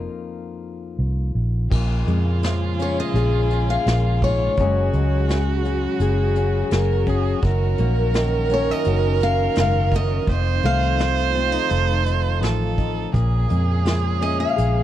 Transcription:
0.00 1.71 F2 medium
0.00 1.67 F3 soft
0.00 1.67 A#3 soft
0.00 1.67 D#4 medium
0.00 3.15 F4 medium
0.00 0.96 F5 medium
0.99 1.31 C2 medium
1.35 1.67 A#1 medium
1.70 2.03 A#1 medium
1.70 3.85 A#2 medium
1.70 4.55 C#3 medium
1.70 4.55 A#3 medium
1.70 4.60 F4 medium
1.70 4.55 G#4 medium
1.70 kick medium
1.70 crash medium
2.07 3.01 F2 medium
2.07 4.58 G#3 medium
2.07 closed hi-hat soft
2.43 4.53 F3 medium
2.43 snare medium
2.43 closed hi-hat medium
2.79 3.52 C#4 medium
2.79 2.97 C#5 medium
2.79 closed hi-hat medium
3.00 3.66 D#5 medium
3.14 3.76 A#1 medium
3.14 4.54 G#4 medium
3.14 closed hi-hat medium
3.50 4.60 C#4 soft
3.50 closed hi-hat soft
3.70 4.23 F5 medium
3.86 4.48 A#1 medium
3.86 4.22 A#2 medium
3.86 snare medium
3.86 closed hi-hat medium
4.22 4.58 G#2 medium
4.22 7.04 C#5 medium
4.22 kick medium
4.22 closed hi-hat soft
4.57 4.89 F#1 medium
4.57 7.39 F#2 medium
4.57 7.40 C#3 medium
4.57 5.28 F#3 medium
4.57 7.39 G#3 medium
4.57 4.94 G#3 medium
4.57 5.65 C#4 medium
4.57 10.23 F#4 medium
4.57 6.72 F#4 medium
4.57 6.00 G#4 medium
4.57 kick medium
4.57 closed hi-hat medium
4.93 5.86 C#2 medium
4.93 7.43 G#3 medium
4.93 closed hi-hat soft
5.28 6.70 F#3 medium
5.28 snare medium
5.28 closed hi-hat medium
5.65 6.36 C#4 medium
5.65 closed hi-hat soft
6.00 6.62 F#1 medium
6.00 7.39 G#4 medium
6.00 closed hi-hat medium
6.36 7.06 C#4 soft
6.36 closed hi-hat soft
6.71 7.33 F#1 medium
6.71 7.38 F#3 medium
6.71 7.10 A#4 medium
6.71 snare medium
6.71 closed hi-hat medium
7.06 7.38 C#4 medium
7.06 7.44 G#4 medium
7.06 kick medium
7.06 closed hi-hat medium
7.41 7.74 F#1 loud
7.41 9.56 F#2 medium
7.41 13.09 D#3 medium
7.41 10.24 C#4 medium
7.41 10.30 A#4 loud
7.41 kick medium
7.41 closed hi-hat medium
7.78 8.71 A#1 medium
7.78 10.23 A#3 medium
7.78 closed hi-hat medium
8.14 10.99 D#3 medium
8.14 snare medium
8.14 closed hi-hat medium
8.49 9.21 C#4 medium
8.49 closed hi-hat soft
8.54 8.71 C#5 medium
8.71 9.23 D#5 medium
8.85 9.48 F#1 medium
8.85 10.24 F#4 medium
8.85 closed hi-hat medium
9.20 10.24 C#4 medium
9.20 9.55 F5 loud
9.20 closed hi-hat soft
9.55 10.19 F#1 medium
9.55 9.92 G#2 medium
9.55 snare medium
9.55 closed hi-hat medium
9.60 9.95 F5 loud
9.92 10.28 F#2 medium
9.92 kick medium
9.92 closed hi-hat soft
9.96 10.65 D#5 medium
10.26 10.59 F1 medium
10.26 13.15 F2 medium
10.26 13.11 A3 medium
10.26 13.11 F4 medium
10.26 12.45 C5 loud
10.26 kick medium
10.26 closed hi-hat medium
10.63 11.57 C2 medium
10.63 13.10 A3 medium
10.63 12.75 F5 medium
10.63 closed hi-hat soft
10.99 12.39 F3 medium
10.99 snare medium
10.99 closed hi-hat medium
11.35 11.52 C4 medium
11.35 closed hi-hat soft
11.52 12.05 D#4 soft
11.70 12.43 F1 medium
11.70 13.10 A4 medium
11.70 closed hi-hat medium
12.06 12.77 D#4 medium
12.06 closed hi-hat soft
12.41 13.05 A1 medium
12.41 13.09 F3 medium
12.41 13.14 A4 medium
12.41 snare medium
12.41 closed hi-hat medium
12.78 13.10 D#4 medium
12.78 kick medium
12.78 closed hi-hat soft
13.12 13.45 A#1 medium
13.12 14.83 A#2 medium
13.12 14.83 C#3 medium
13.12 14.83 A#3 medium
13.12 14.83 G#4 medium
13.12 kick medium
13.12 closed hi-hat medium
13.49 14.44 F2 medium
13.49 14.83 G#3 medium
13.49 closed hi-hat soft
13.85 14.83 F3 medium
13.85 snare medium
13.85 closed hi-hat medium
14.21 14.83 C#4 medium
14.21 14.40 D#5 medium
14.21 closed hi-hat soft
14.40 14.83 F5 medium
14.56 14.83 A#1 medium
14.56 14.83 G#4 medium
14.56 closed hi-hat medium

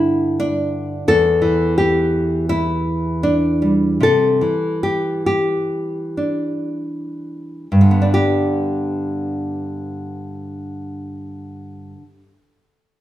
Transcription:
0.00 1.02 G2 medium
0.00 1.06 D3 soft
0.00 1.07 E4 medium
0.40 1.08 D4 medium
1.08 4.00 E2 medium
1.08 1.77 A4 medium
1.42 3.95 E3 medium
1.78 2.48 G4 medium
2.49 4.01 E4 medium
3.23 4.00 D4 medium
3.62 7.73 G3 soft
4.00 4.41 C3 medium
4.00 4.83 A4 medium
4.41 7.66 E3 soft
4.83 5.25 G4 medium
5.26 7.73 G4 medium
6.17 7.66 D4 soft
7.72 11.93 G2 soft
7.81 12.02 D3 soft
7.91 12.12 B3 soft
8.02 12.23 D4 soft
8.14 12.31 G4 medium

